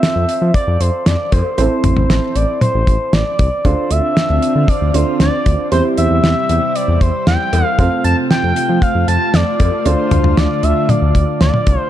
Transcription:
0.00 1.54 C4 medium
0.00 1.54 F4 medium
0.00 1.54 A4 medium
0.00 1.54 C5 medium
0.00 0.54 E5 loud
0.00 snare loud
0.00 closed hi-hat medium
0.16 0.25 F2 loud
0.29 closed hi-hat medium
0.42 0.51 F3 loud
0.54 0.82 D5 loud
0.54 kick loud
0.54 closed hi-hat medium
0.67 0.77 F2 loud
0.80 0.90 F2 loud
0.80 1.08 C5 medium
0.80 closed hi-hat medium
1.06 1.16 F2 loud
1.06 1.33 D5 loud
1.06 snare loud
1.06 closed hi-hat medium
1.32 1.42 F2 loud
1.32 2.37 C5 loud
1.32 kick loud
1.32 closed hi-hat medium
1.32 cowbell medium
1.58 1.68 A1 loud
1.58 3.61 C4 medium
1.58 3.61 E4 medium
1.58 3.61 A4 medium
1.58 3.61 C5 medium
1.58 closed hi-hat medium
1.84 1.94 A1 medium
1.84 closed hi-hat medium
1.84 mid tom loud
1.97 2.06 A1 loud
1.97 mid tom medium
2.10 2.19 A1 loud
2.10 snare loud
2.10 closed hi-hat medium
2.35 2.45 A1 loud
2.35 2.61 D5 medium
2.35 closed hi-hat medium
2.61 3.15 C5 loud
2.61 closed hi-hat medium
2.61 mid tom medium
2.74 2.84 A1 loud
2.87 2.97 A1 loud
2.87 kick medium
2.87 closed hi-hat medium
3.13 3.23 A1 loud
3.13 3.66 D5 loud
3.13 snare loud
3.13 closed hi-hat medium
3.39 3.49 C2 loud
3.39 kick loud
3.39 closed hi-hat medium
3.65 3.75 D2 loud
3.65 5.70 D3 medium
3.65 5.70 C4 medium
3.65 4.92 D4 medium
3.65 5.70 F4 medium
3.65 4.92 F4 medium
3.65 4.92 A4 medium
3.65 3.92 C5 loud
3.65 4.92 D5 medium
3.65 kick loud
3.65 closed hi-hat medium
3.91 4.00 D2 loud
3.91 4.70 E5 loud
3.91 closed hi-hat medium
4.17 snare loud
4.17 closed hi-hat medium
4.30 4.39 D2 loud
4.42 closed hi-hat medium
4.56 4.65 D3 loud
4.68 4.96 D5 loud
4.68 kick loud
4.68 closed hi-hat medium
4.81 4.91 D2 medium
4.94 5.04 D2 loud
4.94 5.72 D4 medium
4.94 5.72 F4 soft
4.94 5.72 A4 soft
4.94 5.19 C5 medium
4.94 5.72 D5 medium
4.94 closed hi-hat medium
5.20 5.30 D2 loud
5.20 5.68 D5 loud
5.20 snare loud
5.20 closed hi-hat medium
5.46 5.56 D2 medium
5.46 kick loud
5.46 closed hi-hat medium
5.72 5.82 E2 loud
5.72 9.82 C3 medium
5.72 7.77 G3 medium
5.72 7.75 C4 medium
5.72 7.75 E4 medium
5.72 7.77 E4 medium
5.72 7.75 G4 medium
5.72 5.83 C5 loud
5.72 7.75 C5 medium
5.72 closed hi-hat medium
5.98 6.07 E2 loud
5.98 6.77 E5 loud
5.98 closed hi-hat medium
6.11 6.20 E2 loud
6.24 6.33 E2 medium
6.24 snare loud
6.24 closed hi-hat medium
6.49 6.59 E2 loud
6.49 closed hi-hat medium
6.75 7.03 D5 loud
6.75 closed hi-hat medium
6.88 6.98 E2 loud
7.01 7.11 E2 loud
7.01 7.26 C5 loud
7.01 kick medium
7.01 closed hi-hat medium
7.27 7.37 E2 loud
7.27 7.65 G5 loud
7.27 snare loud
7.27 closed hi-hat medium
7.53 7.63 E2 loud
7.53 closed hi-hat medium
7.53 cowbell medium
7.65 7.79 F5 loud
7.79 7.88 F2 loud
7.79 11.89 A3 medium
7.79 9.82 C4 medium
7.79 11.88 F4 medium
7.79 9.82 F4 medium
7.79 9.82 A4 medium
7.79 9.82 C5 medium
7.79 8.04 F5 loud
7.79 kick loud
7.79 closed hi-hat medium
8.04 8.14 F2 loud
8.04 8.16 A5 loud
8.04 closed hi-hat medium
8.30 8.84 G5 loud
8.30 snare loud
8.30 closed hi-hat medium
8.43 8.53 F2 loud
8.56 closed hi-hat medium
8.69 8.79 F3 loud
8.82 9.07 F5 loud
8.82 kick loud
8.82 closed hi-hat medium
8.95 9.05 F2 loud
9.08 9.18 F2 loud
9.08 9.35 A5 loud
9.08 closed hi-hat medium
9.34 9.44 F2 loud
9.34 9.87 D5 loud
9.34 snare loud
9.34 closed hi-hat medium
9.60 9.70 F2 loud
9.60 kick loud
9.60 closed hi-hat medium
9.60 cowbell medium
9.86 9.95 D2 loud
9.86 11.90 D3 medium
9.86 11.88 D4 medium
9.86 11.88 F4 medium
9.86 11.88 A4 medium
9.86 10.39 C5 loud
9.86 11.88 D5 medium
9.86 closed hi-hat medium
10.11 10.21 D2 loud
10.11 closed hi-hat medium
10.11 mid tom loud
10.24 10.34 D2 medium
10.24 mid tom medium
10.37 10.47 D2 loud
10.37 10.65 D5 loud
10.37 snare loud
10.37 closed hi-hat medium
10.63 10.73 D2 loud
10.63 10.91 E5 loud
10.63 closed hi-hat medium
10.89 11.40 D5 medium
10.89 closed hi-hat medium
10.89 mid tom medium
11.02 11.12 D2 loud
11.15 11.25 D2 loud
11.15 kick medium
11.15 closed hi-hat medium
11.41 11.51 D2 loud
11.41 11.79 D5 loud
11.41 snare loud
11.41 closed hi-hat medium
11.54 mid tom medium
11.67 11.77 C2 loud
11.67 kick loud
11.67 closed hi-hat medium
11.79 11.90 C5 loud

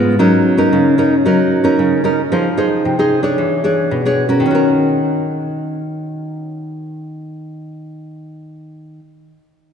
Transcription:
0.00 0.16 G#2 medium
0.00 0.14 G#3 medium
0.00 0.14 B3 medium
0.00 0.15 F4 medium
0.19 0.70 F#3 medium
0.19 0.55 C#4 medium
0.19 0.55 D#4 medium
0.19 0.55 A#4 medium
0.57 0.94 C#4 medium
0.57 0.94 D#4 medium
0.57 0.94 A#4 medium
0.73 1.23 C#3 medium
0.98 1.14 C#4 medium
0.98 1.14 D#4 medium
0.98 1.14 A#4 medium
1.25 1.76 F#3 medium
1.25 1.61 C#4 medium
1.25 1.61 D#4 medium
1.25 1.62 A#4 medium
1.64 2.00 C#4 medium
1.64 2.00 D#4 medium
1.64 2.00 A#4 medium
1.79 2.29 C#3 medium
2.04 2.20 C#4 soft
2.04 2.20 D#4 medium
2.04 2.21 A#4 medium
2.32 2.82 F3 medium
2.32 2.47 D#4 medium
2.32 2.47 G#4 medium
2.32 2.48 C5 medium
2.57 2.93 D#4 medium
2.57 2.94 G#4 medium
2.57 2.94 C5 medium
2.85 3.36 C3 medium
2.99 3.21 D#4 medium
2.99 3.21 G#4 medium
2.99 3.21 C5 medium
3.23 3.59 D4 medium
3.23 3.60 G#4 medium
3.23 3.60 C#5 medium
3.38 3.89 E3 medium
3.64 4.00 D4 soft
3.64 4.00 G#4 soft
3.64 4.00 C#5 medium
3.91 4.42 B2 medium
4.05 4.27 D4 medium
4.05 4.27 G#4 soft
4.05 4.28 C#5 medium
4.29 4.45 C#4 medium
4.29 4.49 F#4 soft
4.29 4.54 A#4 medium
4.40 8.99 D#3 medium
4.46 9.05 C#4 medium
4.51 9.10 F#4 medium
4.55 9.14 A#4 medium

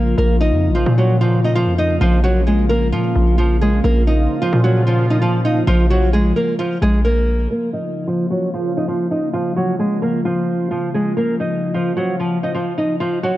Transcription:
0.00 0.15 A#1 loud
0.00 7.47 C#3 medium
0.00 3.80 F3 medium
0.00 0.14 A#3 medium
0.00 0.15 A#3 medium
0.00 3.80 F4 loud
0.00 0.15 A#4 medium
0.18 0.54 A#1 loud
0.18 7.47 A#3 medium
0.18 0.36 A#3 medium
0.18 0.35 A#4 medium
0.41 0.73 D#4 medium
0.41 0.73 D#5 medium
0.52 0.71 F2 loud
0.69 0.86 A#1 loud
0.75 0.92 F3 medium
0.75 0.92 F4 medium
0.86 1.68 A#2 loud
0.98 1.16 F#3 medium
0.98 1.15 F#4 medium
1.21 1.39 F3 medium
1.21 1.38 F4 medium
1.44 1.53 D#4 medium
1.44 1.53 D#5 medium
1.55 1.73 F3 medium
1.55 1.72 F4 medium
1.67 1.99 F2 loud
1.78 1.95 D#4 medium
1.78 1.96 D#5 medium
2.01 2.94 A#1 loud
2.01 2.19 F3 medium
2.01 2.18 F4 loud
2.24 2.41 F#3 medium
2.24 2.41 F#4 medium
2.47 2.64 G#3 medium
2.47 2.64 G#4 medium
2.69 2.87 A#3 medium
2.69 2.87 A#4 loud
2.92 3.14 A#2 medium
2.92 3.36 F3 medium
2.92 3.36 F4 loud
3.15 3.81 A#1 loud
3.38 3.56 F3 medium
3.38 3.55 F4 medium
3.61 3.79 G#3 medium
3.61 3.79 G#4 medium
3.84 4.28 A#1 loud
3.84 7.47 F3 medium
3.84 4.02 A#3 medium
3.84 7.47 F4 medium
3.84 4.01 A#4 medium
4.07 4.39 D#4 medium
4.07 4.40 D#5 medium
4.42 4.59 F3 medium
4.42 4.59 F4 medium
4.53 5.63 A#2 loud
4.64 4.82 F#3 medium
4.64 4.81 F#4 medium
4.87 5.05 F3 medium
4.87 5.04 F4 medium
5.10 5.19 D#4 medium
5.10 5.19 D#5 medium
5.22 5.39 F3 medium
5.22 5.39 F4 medium
5.45 5.62 D#4 medium
5.45 5.62 D#5 medium
5.67 6.33 A#1 loud
5.67 5.85 F3 medium
5.67 5.84 F4 loud
5.90 6.08 F#3 medium
5.90 6.07 F#4 medium
6.13 6.31 G#3 medium
6.13 6.30 G#4 medium
6.36 6.54 A#3 medium
6.36 6.53 A#4 medium
6.59 6.77 F3 medium
6.59 6.76 F4 loud
6.82 7.48 A#1 loud
6.82 7.00 G#3 medium
6.82 6.99 G#4 loud
7.05 7.48 A#3 medium
7.05 7.48 A#4 medium
7.50 13.37 C#3 medium
7.50 11.13 F3 medium
7.50 13.37 A#3 medium
7.50 7.68 A#3 medium
7.50 13.37 F4 medium
7.50 7.68 A#4 medium
7.73 8.06 D#4 medium
7.73 8.06 D#5 medium
8.07 8.25 F3 medium
8.07 8.25 F4 medium
8.31 8.48 F#3 medium
8.31 8.48 F#4 medium
8.54 8.71 F3 medium
8.54 8.71 F4 medium
8.77 8.85 D#4 medium
8.77 8.86 D#5 medium
8.88 9.06 F3 medium
8.88 9.05 F4 medium
9.11 9.28 D#4 medium
9.11 9.29 D#5 medium
9.33 9.51 F3 medium
9.33 9.51 F4 medium
9.56 9.74 F#3 medium
9.56 9.74 F#4 medium
9.79 9.97 G#3 medium
9.79 9.97 G#4 medium
10.02 10.20 A#3 medium
10.02 10.19 A#4 medium
10.25 10.69 F3 medium
10.25 10.68 F4 medium
10.71 10.89 F3 medium
10.71 10.88 F4 medium
10.94 11.12 G#3 medium
10.94 11.11 G#4 medium
11.17 13.37 F3 medium
11.17 11.35 A#3 medium
11.17 11.34 A#4 medium
11.40 11.72 D#4 medium
11.40 11.73 D#5 medium
11.74 11.92 F3 medium
11.74 11.91 F4 medium
11.97 12.15 F#3 medium
11.97 12.14 F#4 medium
12.20 12.37 F3 medium
12.20 12.37 F4 medium
12.43 12.52 D#4 medium
12.43 12.52 D#5 medium
12.54 12.72 F3 medium
12.54 12.72 F4 medium
12.78 12.95 D#4 medium
12.78 12.95 D#5 medium
13.00 13.18 F3 medium
13.00 13.17 F4 loud
13.23 13.37 F#3 medium
13.23 13.37 F#4 medium

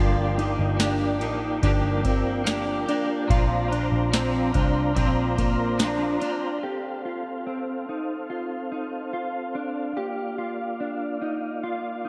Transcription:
0.00 0.56 G1 loud
0.00 0.37 G2 medium
0.00 0.37 D3 medium
0.00 0.38 F3 medium
0.00 0.38 A#3 medium
0.00 0.36 D4 medium
0.00 0.38 F4 medium
0.00 6.59 F4 medium
0.00 0.34 G4 medium
0.00 3.26 A#4 medium
0.00 6.59 D5 medium
0.00 3.26 G5 medium
0.35 0.79 D4 medium
0.35 0.79 D#4 medium
0.35 0.78 G4 medium
0.35 ride soft
0.39 0.75 F3 soft
0.39 0.78 A#3 soft
0.59 1.22 G1 medium
0.77 1.20 F3 medium
0.77 1.21 A#3 medium
0.77 1.21 D4 medium
0.77 snare loud
0.77 ride medium
0.77 tambourine medium
0.81 1.20 D4 medium
0.81 1.18 G4 medium
1.19 1.61 A1 medium
1.19 1.63 D4 medium
1.19 1.63 D#4 medium
1.19 1.62 G4 medium
1.19 ride soft
1.23 1.62 F3 soft
1.23 1.63 A#3 medium
1.62 2.84 G1 loud
1.62 2.04 G2 medium
1.62 2.05 D3 medium
1.62 2.05 F3 medium
1.62 2.05 A#3 medium
1.62 2.05 D4 medium
1.62 2.04 D4 medium
1.62 2.02 G4 medium
1.62 kick medium
1.62 ride medium
2.03 2.45 A#3 medium
2.03 2.46 C4 medium
2.03 2.47 D4 medium
2.03 2.46 G4 medium
2.03 kick medium
2.03 ride soft
2.09 2.43 F3 medium
2.44 2.87 F3 medium
2.44 2.88 A#3 medium
2.44 2.87 D4 medium
2.44 snare loud
2.44 ride medium
2.44 tambourine medium
2.48 2.87 D4 medium
2.48 2.85 G4 medium
2.86 3.29 D4 soft
2.86 3.30 D4 medium
2.86 3.29 G4 medium
2.86 ride soft
2.90 3.27 F3 soft
2.90 3.29 A#3 medium
3.27 3.89 A#1 loud
3.27 3.70 A#2 medium
3.27 3.71 F3 medium
3.27 3.71 C4 medium
3.27 3.70 D4 loud
3.27 3.72 F4 medium
3.27 6.59 C5 medium
3.27 6.59 A#5 medium
3.27 kick loud
3.27 ride medium
3.32 3.67 F4 medium
3.68 4.13 D4 medium
3.68 4.11 F4 medium
3.73 4.13 C4 medium
3.73 ride soft
3.92 4.51 A#1 medium
4.12 4.54 F3 medium
4.12 4.54 C4 medium
4.12 4.55 C4 medium
4.12 snare loud
4.12 ride medium
4.12 tambourine medium
4.16 4.55 D4 medium
4.16 4.51 F4 medium
4.52 4.94 C2 medium
4.52 4.96 D4 medium
4.52 4.97 D4 medium
4.52 4.95 F4 medium
4.52 kick medium
4.52 ride soft
4.58 4.96 C4 medium
4.95 6.17 A#1 loud
4.95 5.37 A#2 medium
4.95 5.38 F3 medium
4.95 5.38 C4 medium
4.95 5.38 D4 medium
4.95 kick medium
4.95 ride medium
4.99 5.34 F4 medium
5.36 5.80 A#3 medium
5.36 5.80 D4 medium
5.36 5.78 F4 medium
5.36 kick medium
5.36 ride soft
5.42 5.79 C4 soft
5.78 6.20 F3 medium
5.78 6.22 C4 medium
5.78 6.21 D4 medium
5.78 snare medium
5.78 ride medium
5.78 tambourine medium
5.82 6.22 D4 medium
5.82 6.19 F4 medium
6.20 6.63 D4 medium
6.20 6.64 D4 soft
6.20 6.62 F4 medium
6.20 ride soft
6.26 6.65 C4 soft
6.63 9.93 C4 medium
6.63 7.05 G4 medium
6.63 9.93 A4 soft
6.63 9.93 C5 medium
6.63 12.09 F5 medium
7.05 7.47 F4 medium
7.47 7.88 C4 medium
7.89 8.30 D#4 medium
8.30 8.71 F4 medium
8.72 9.13 D#4 medium
9.13 9.55 F4 medium
9.55 9.96 D4 medium
9.97 12.09 A#3 medium
9.97 12.09 F4 medium
9.97 10.38 G4 medium
9.97 12.09 D5 soft
10.38 10.80 F4 medium
10.80 11.21 D4 medium
11.22 11.63 D#4 medium
11.63 12.05 F4 medium
12.05 12.09 D#4 medium

